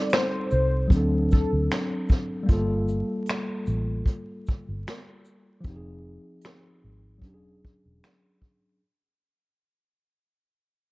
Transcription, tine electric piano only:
0.00 0.86 G3 medium
0.00 0.87 C4 soft
0.00 0.89 D#4 soft
0.00 0.90 A4 medium
0.88 2.44 F#3 medium
0.88 2.46 C4 medium
0.94 2.47 D4 medium
0.94 2.49 A4 medium
2.43 5.58 G3 medium
2.43 5.59 A#3 medium
2.50 5.61 F4 medium
2.50 5.63 A4 medium
5.61 7.17 F3 medium
5.61 7.19 C4 medium
5.67 7.21 D#4 medium
5.67 5.74 G4 medium
5.76 7.25 G#4 medium
7.18 8.75 F#3 medium
7.18 8.77 C#4 medium
7.25 8.78 D4 medium
7.25 7.32 G4 medium
7.34 8.83 G#4 medium

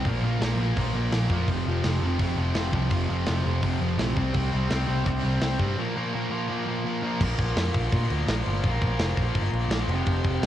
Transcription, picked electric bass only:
0.05 0.20 A#1 medium
0.22 0.36 A#1 medium
0.40 0.54 A#1 medium
0.56 0.71 A#1 medium
0.76 0.91 A#1 medium
0.94 1.08 A#1 medium
1.12 1.27 A#1 medium
1.30 1.44 F2 medium
1.48 1.62 F1 medium
1.67 1.81 F1 medium
1.85 1.99 F1 medium
2.02 2.16 F1 medium
2.20 2.34 F1 medium
2.37 2.51 F1 medium
2.55 2.69 F1 medium
2.73 2.87 C2 medium
2.91 3.05 F1 medium
3.09 3.24 F1 medium
3.28 3.42 F1 medium
3.46 3.60 F1 medium
3.63 3.77 F1 medium
3.80 3.95 F1 medium
3.98 4.12 A#1 medium
4.16 4.30 C2 medium
4.34 4.49 C2 medium
4.53 4.67 C2 medium
4.71 4.85 C2 medium
4.88 5.03 C2 medium
5.06 5.20 C2 medium
5.23 5.38 C2 medium
5.41 5.56 C2 medium
5.59 5.74 G2 loud
7.21 7.34 A#1 loud
7.38 7.51 A#1 loud
7.56 7.69 F2 medium
7.75 7.88 A#1 medium
7.93 8.06 A#2 medium
8.10 8.23 D2 medium
8.27 8.41 A#1 medium
8.47 8.60 G1 loud
8.64 8.77 A#1 loud
8.82 8.95 A#1 medium
8.99 9.12 F1 medium
9.17 9.30 A#1 medium
9.35 9.48 G1 medium
9.52 9.65 A#1 medium
9.69 9.83 A#1 medium
9.88 10.01 F1 loud
10.06 10.20 F1 loud
10.25 10.38 F1 loud
10.42 10.46 C2 medium

